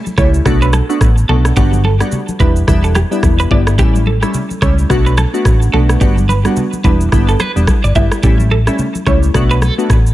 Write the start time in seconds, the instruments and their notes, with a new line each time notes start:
0.06 high conga, shaker
0.17 fingered electric bass C#2, synth keys G3 A3 C#4 E4, clean electric guitar C#5, kick, cross-stick, high conga, shaker
0.34 shaker
0.45 fingered electric bass B1, synth keys A3 B3 D4 F#4, kick, cross-stick, low conga, shaker
0.62 clean electric guitar B4, shaker
0.73 clean electric guitar A4, cross-stick, high conga, shaker
0.89 synth keys A3 B3 D4 F#4, shaker
1.01 fingered electric bass A1, kick, cross-stick, high conga, shaker
1.18 shaker
1.29 fingered electric bass B1, synth keys A3 B3 D4 F#4, clean electric guitar A4, high conga, low conga
1.45 cross-stick, shaker
1.56 fingered electric bass G1, synth keys G3 B3 D4 F#4, clean electric guitar G4, kick, low conga, shaker
1.73 high conga, shaker
1.84 clean electric guitar A4, high conga
2.00 synth keys G3 B3 D4 F#4, cross-stick, shaker
2.12 low conga, shaker
2.28 high conga, shaker
2.40 fingered electric bass E1, synth keys G3 B3 D4 E4, clean electric guitar B4, kick, high conga, shaker
2.56 shaker
2.67 fingered electric bass E1, synth keys G3 B3 D4 E4, kick, cross-stick, low conga, shaker
2.84 clean electric guitar A4, shaker
2.95 clean electric guitar G4, cross-stick, high conga, shaker
3.11 synth keys G3 B3 D4 E4, shaker
3.23 fingered electric bass E1, kick, cross-stick, high conga, shaker
3.40 clean electric guitar B4, shaker
3.51 fingered electric bass G1, synth keys G3 B3 D4 E4, clean electric guitar D5, kick, high conga, low conga
3.67 cross-stick, shaker
3.78 fingered electric bass A1, synth keys G3 A3 C#4 E4, clean electric guitar G4, kick, low conga, shaker
3.95 high conga, shaker
4.06 clean electric guitar A4, high conga
4.22 synth keys G3 A3 C#4 E4, cross-stick, shaker
4.34 low conga, shaker
4.51 high conga, shaker
4.62 fingered electric bass C#2, synth keys G3 A3 C#4 E4, clean electric guitar C#5, kick, cross-stick, high conga, shaker
4.78 shaker
4.89 fingered electric bass B1, synth keys A3 B3 D4 F#4, kick, cross-stick, low conga, shaker
5.06 clean electric guitar B4, shaker
5.17 clean electric guitar A4, cross-stick, high conga, shaker
5.33 synth keys A3 B3 D4 F#4, shaker
5.45 fingered electric bass A1, kick, cross-stick, high conga, shaker
5.62 shaker
5.73 fingered electric bass B1, synth keys A3 B3 D4 F#4, clean electric guitar A4, high conga, low conga
5.89 cross-stick, shaker
6.01 fingered electric bass G1, synth keys G3 B3 D4 F#4, clean electric guitar G4, kick, low conga, shaker
6.17 high conga, shaker
6.29 clean electric guitar B4, high conga, shaker
6.44 synth keys G3 B3 D4 F#4, cross-stick, shaker
6.56 low conga, shaker
6.73 high conga, shaker
6.84 fingered electric bass E1, synth keys G3 B3 D4 E4, clean electric guitar B4, kick, high conga, shaker
7.01 shaker
7.12 fingered electric bass G1, synth keys G3 B3 D4 E4, kick, cross-stick, low conga, shaker
7.29 clean electric guitar A4, shaker
7.40 clean electric guitar B4, cross-stick, high conga, shaker
7.56 fingered electric bass E1, synth keys G3 B3 D4 E4, shaker
7.67 kick, cross-stick, high conga, shaker
7.84 fingered electric bass G1, clean electric guitar D5, shaker
7.95 fingered electric bass G1, synth keys G3 B3 D4 E4, clean electric guitar E5, kick, high conga, low conga, shaker
8.12 cross-stick, shaker
8.23 fingered electric bass A1, synth keys G3 A3 C#4 E4, clean electric guitar G4, kick, low conga, shaker
8.39 high conga, shaker
8.51 clean electric guitar A4, high conga
8.67 synth keys G3 A3 C#4 E4, cross-stick, shaker
8.78 low conga, shaker
8.95 high conga, shaker
9.06 fingered electric bass C#2, synth keys G3 A3 C#4 E4, clean electric guitar C#5, kick, cross-stick, high conga, shaker
9.23 shaker
9.34 fingered electric bass B1, synth keys A3 B3 D4 F#4, kick, cross-stick, low conga, shaker
9.51 clean electric guitar B4, shaker
9.62 clean electric guitar A4, cross-stick, high conga, shaker
9.78 synth keys A3 B3 D4 F#4, shaker
9.90 fingered electric bass A1, kick, cross-stick, high conga, shaker
10.07 shaker